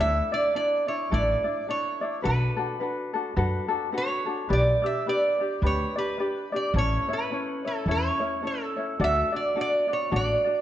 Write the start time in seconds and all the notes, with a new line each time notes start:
0.00 D2 D4 E4 A4 D5 E5
0.32 D4 E4 D5
0.55 D4 E4 A4 D5
0.87 D4 E4 C#5 D5
1.11 A1 D4 E4 A4 D5
1.44 D4 E4 D5
1.68 D4 E4 A4 C#5 D5
2.01 D4 E4 D5
2.22 B1 D4 F#4 A4 B4
2.57 D4 F#4 A4
2.80 D4 F#4 A4 B4
3.14 D4 F#4 A4
3.36 F#2 D4 F#4 A4 B4
3.68 D4 F#4 A4
3.92 D4 F#4 A4 B4
3.98 C#5
4.26 D4 F#4 A4
4.49 B1 D4 G4 B4 D5
4.53 D5
4.82 D4 G4 D5
4.86 E5
5.07 D4 G4 B4 D5
5.40 D4 G4 D5
5.62 D2 D4 G4 B4 D5
5.66 C#5
5.96 D4 G4 B4 D5
6.18 D4 G4 B4 D5
6.52 D4 G4 D5
6.74 A1 C#4 E4 A4 C#5
6.78 C#5
7.08 C#4 E4 C#5
7.13 B4
7.31 C#4 E4 A4 C#5
7.65 C#4 E4 A4 C#5
7.86 E2 C#4 E4 A4 C#5
7.91 C#5
8.20 C#4 E4 C#5
8.43 C#4 E4 A4 C#5
8.47 A4
8.77 C#4 E4 C#5
8.99 D2 D4 F#4 A4 D5
9.04 E5
9.32 D4 F#4 D5
9.36 D5
9.55 D4 F#4 A4 D5
9.61 D5
9.88 D4 F#4 D5
9.93 C#5
10.11 A1 D4 F#4 A4 D5
10.16 D5
10.44 D4 F#4 D5